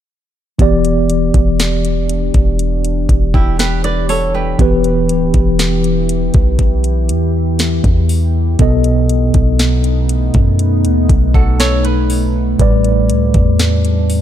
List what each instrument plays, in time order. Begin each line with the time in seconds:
0.59 808-style bass E1, tine electric piano E3 B3 G4 D5, ambient pad E3 D4 G4, kick, closed hi-hat
0.85 closed hi-hat
1.10 closed hi-hat
1.34 808-style bass E1, kick, closed hi-hat
1.60 snare, closed hi-hat
1.85 closed hi-hat
2.09 closed hi-hat
2.34 808-style bass E1, kick, closed hi-hat
2.59 closed hi-hat
2.85 closed hi-hat
3.09 808-style bass E1, kick, closed hi-hat
3.34 nylon-string guitar E4 G4, kick
3.59 nylon-string guitar G4 B4, snare, closed hi-hat
3.84 nylon-string guitar B4 D5, closed hi-hat
4.09 nylon-string guitar A4 C#5, open hi-hat
4.34 nylon-string guitar G4 B4
4.58 808-style bass E1, tine electric piano E3 B3 G4 B4, ambient pad E4, kick, closed hi-hat
4.84 closed hi-hat
5.09 808-style bass D1, closed hi-hat
5.34 808-style bass E1, kick, closed hi-hat
5.59 snare, closed hi-hat
5.84 closed hi-hat
6.09 closed hi-hat
6.34 808-style bass B1, kick, closed hi-hat
6.59 kick, closed hi-hat
6.84 closed hi-hat
7.09 808-style bass E2, closed hi-hat
7.59 snare, closed hi-hat
7.84 808-style bass E2, kick, closed hi-hat
8.09 open hi-hat
8.59 808-style bass B1, tine electric piano B2 B3 A4 D#5, ambient pad A3 B3 D#4, kick, closed hi-hat
8.84 closed hi-hat
9.09 closed hi-hat
9.34 808-style bass B1, kick, closed hi-hat
9.59 snare, closed hi-hat
9.84 closed hi-hat
10.09 closed hi-hat
10.34 808-style bass F#2, kick, closed hi-hat
10.59 closed hi-hat
10.85 808-style bass D#2, closed hi-hat
11.09 808-style bass B1, kick, closed hi-hat
11.34 nylon-string guitar F#4 A4, kick
11.60 nylon-string guitar A4 C#5, snare, closed hi-hat
11.85 nylon-string guitar B4, closed hi-hat
12.10 open hi-hat
12.58 808-style bass A1, tine electric piano A2 G3 B4 D5, ambient pad G3 D4, kick, closed hi-hat
12.84 closed hi-hat
13.10 808-style bass C#2, closed hi-hat
13.34 808-style bass E2, kick, closed hi-hat
13.59 snare, closed hi-hat
13.85 closed hi-hat
14.10 open hi-hat